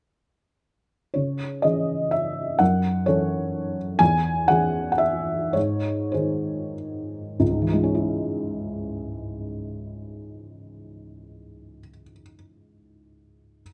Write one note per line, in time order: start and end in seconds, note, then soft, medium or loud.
1.14 1.63 C#3 soft
1.14 1.63 C#5 medium
1.62 2.56 E3 soft
1.62 2.56 C#4 soft
1.62 2.56 G#4 soft
1.62 2.11 D#5 medium
2.11 2.59 E5 medium
2.59 3.05 F#2 soft
2.59 3.06 F#5 medium
3.06 3.96 E3 soft
3.06 3.97 C#4 soft
3.06 3.97 A4 soft
3.06 3.76 C#5 medium
3.99 4.47 E2 medium
3.99 4.48 G#5 medium
4.48 5.52 E3 soft
4.48 5.52 C#4 soft
4.48 5.52 G#4 soft
4.48 4.90 F#5 medium
4.92 5.00 F#5 medium
4.98 5.54 E5 medium
5.53 6.11 G#2 soft
5.53 6.12 C#5 medium
6.12 7.36 D#3 soft
6.12 7.36 D#4 soft
6.12 7.37 G#4 soft
6.12 6.74 C5 soft
7.40 11.78 C#2 soft
7.51 11.89 G#2 soft
7.62 12.00 E3 soft
7.73 12.12 G#3 soft
7.83 12.22 C#4 soft
7.95 12.33 E4 soft